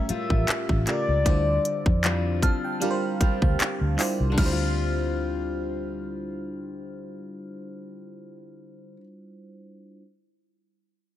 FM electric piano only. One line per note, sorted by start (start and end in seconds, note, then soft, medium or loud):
0.00 0.86 A3 medium
0.00 1.28 C#4 medium
0.00 0.88 F4 medium
0.00 0.88 G4 medium
0.00 0.89 A#4 medium
0.86 1.19 C#3 medium
0.86 1.19 A3 medium
0.86 1.20 F4 medium
0.86 1.20 G4 medium
0.86 1.21 A#4 medium
1.25 2.53 G3 medium
1.25 2.54 D4 medium
1.25 2.54 E4 medium
1.25 2.55 F4 medium
1.25 2.55 C5 medium
2.43 2.63 A5 medium
2.64 2.81 G5 medium
2.80 3.78 G3 medium
2.80 3.78 D4 medium
2.80 3.79 F4 medium
2.80 3.79 G4 medium
2.80 2.90 A#4 medium
2.80 3.18 F5 medium
2.91 3.83 C5 loud
3.21 3.41 G5 medium
3.42 3.59 F5 medium
3.60 3.96 F5 medium
3.97 4.29 G3 medium
3.97 4.31 D4 medium
3.97 4.31 E4 medium
3.97 4.32 F4 medium
3.97 4.32 C5 medium
3.97 4.35 D5 medium
4.30 8.91 G3 medium
4.30 8.93 D4 medium
4.38 8.95 E4 medium
4.38 8.97 F4 medium
4.46 8.99 C5 medium